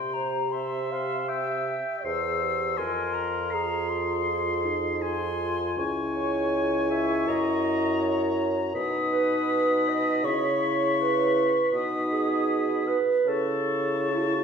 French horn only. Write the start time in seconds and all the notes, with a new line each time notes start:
Already playing: G4
2.04 G#4
2.42 G4
2.78 F4
4.25 F4
4.64 D#4
5.02 F4
5.79 E4
8.77 D#4
10.25 E4
11.75 D#4
13.28 E4